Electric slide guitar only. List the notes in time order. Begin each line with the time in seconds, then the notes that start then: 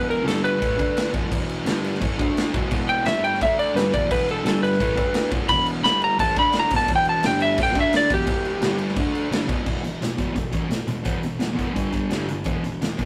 0.10 A#4
0.28 A4
0.44 B4
2.89 G5
3.06 E5
3.24 G5
3.43 E5
3.59 D5
3.76 B4
3.93 D5
4.12 B4
4.31 A4
4.47 A4
4.63 B4
5.49 B5
5.84 B5
6.04 A#5
6.20 A5
6.39 B5
6.60 A#5
6.76 A5
6.96 G5
7.09 A5
7.26 G5
7.42 E5
7.63 G5
7.80 E5
7.97 D5
8.14 G4